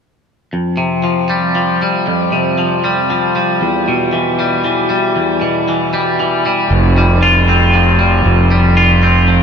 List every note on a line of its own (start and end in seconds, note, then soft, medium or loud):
0.53 1.81 F2 soft
0.77 2.07 C3 soft
1.04 1.54 F3 soft
1.30 1.82 G3 soft
1.55 2.57 F3 soft
1.82 2.84 G3 soft
2.07 3.36 F2 soft
2.32 3.62 C3 soft
2.58 3.09 F3 soft
2.84 3.35 G3 soft
3.10 3.62 F3 soft
3.36 4.39 G3 soft
3.61 4.90 E2 soft
3.88 5.17 B2 soft
4.13 4.63 E3 soft
4.39 4.89 G3 soft
4.64 5.67 E3 soft
4.90 5.92 G3 soft
5.16 6.45 E2 soft
5.41 6.71 B2 soft
5.69 6.18 E3 soft
5.93 6.45 G3 soft
6.20 6.71 E3 soft
6.46 6.71 G3 soft
6.70 8.22 F1 medium
6.70 8.00 F2 soft
6.98 7.99 G3 soft
7.23 8.52 F4 soft
7.49 8.78 C4 soft
7.74 9.03 F3 soft
7.99 8.51 G3 soft
8.25 9.43 F1 medium
8.25 9.43 F2 soft
8.51 9.43 G3 soft
8.77 9.43 F4 medium
9.03 9.43 C4 medium
9.28 9.43 F3 soft